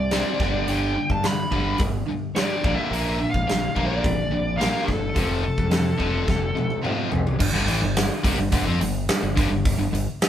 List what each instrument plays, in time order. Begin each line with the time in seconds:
Already playing: fingered electric bass C2, lead electric guitar D5
0.11 distorted electric guitar C3 G3 C4, snare, open hi-hat
0.40 fingered electric bass G1, distorted electric guitar G2 D3 G3, kick, snare
0.68 distorted electric guitar G2 D3 G3, lead electric guitar G5, open hi-hat
0.97 distorted electric guitar G2 D3
1.10 fingered electric bass G2, lead electric guitar A5, kick
1.24 distorted electric guitar G2 D3, lead electric guitar B5, snare, open hi-hat
1.51 fingered electric bass G1, distorted electric guitar G2 D3 G3, kick
1.78 fingered electric bass G1, distorted electric guitar G2 D3, kick, open hi-hat
2.08 distorted electric guitar G2 D3
2.35 distorted electric guitar G2 D3 G3, lead electric guitar D5, snare, open hi-hat
2.63 fingered electric bass A#1, distorted electric guitar A#2 D3 A#3, kick
2.76 lead electric guitar E5
2.90 fingered electric bass A#1, distorted electric guitar A#2 D3 A#3, open hi-hat
3.19 distorted electric guitar A#2 D3
3.30 fingered electric bass A#1, lead electric guitar F5, kick
3.47 distorted electric guitar A#2 D3, snare, open hi-hat
3.75 fingered electric bass A#1, distorted electric guitar A#2 D3 A#3, kick
3.86 lead electric guitar D5
4.03 fingered electric bass A#1, distorted electric guitar A#2 D3, kick, open hi-hat
4.31 distorted electric guitar A#2 D3
4.57 distorted electric guitar A#2 D3 A#3, lead electric guitar F5, snare, open hi-hat
4.84 fingered electric bass G1, distorted electric guitar A#2 D3, lead electric guitar A4
4.88 kick, snare
5.16 fingered electric bass F1, distorted electric guitar F2 C3 F3, kick, open hi-hat
5.44 distorted electric guitar F2 C3
5.58 fingered electric bass F2, kick
5.71 distorted electric guitar F2 C3, snare, open hi-hat
5.97 fingered electric bass F1, distorted electric guitar F2 C3 F3, kick
6.26 fingered electric bass F1, distorted electric guitar F2 C3, kick, snare
6.55 distorted electric guitar F2 C3, high tom
6.70 high tom
6.83 distorted electric guitar F2 C3 F3, mid tom
7.10 distorted electric guitar F2 C3, fingered electric bass F2, floor tom
7.27 floor tom
7.39 fingered electric bass G1, distorted electric guitar G2 D3, kick, crash
7.53 fingered electric bass G1, distorted electric guitar G2 D3
7.67 fingered electric bass A1, distorted electric guitar A2 E3, open hi-hat
7.81 fingered electric bass G1, distorted electric guitar G2 D3
7.97 snare, open hi-hat
8.23 fingered electric bass C2, distorted electric guitar C3 G3, kick, open hi-hat
8.38 fingered electric bass G1, distorted electric guitar G2 D3
8.52 fingered electric bass G1, distorted electric guitar G2 D3, kick, open hi-hat
8.66 fingered electric bass F2, distorted electric guitar F3 C4
8.80 fingered electric bass G1, distorted electric guitar G2 D3, open hi-hat
9.09 snare, open hi-hat
9.23 fingered electric bass G1, distorted electric guitar G2 D3
9.36 fingered electric bass G1, distorted electric guitar G2 D3, kick, open hi-hat
9.50 fingered electric bass G1, distorted electric guitar G2 D3
9.65 kick, open hi-hat
9.78 fingered electric bass G1, distorted electric guitar G2 D3
9.93 fingered electric bass G1, distorted electric guitar G2 D3, open hi-hat
10.22 snare, open hi-hat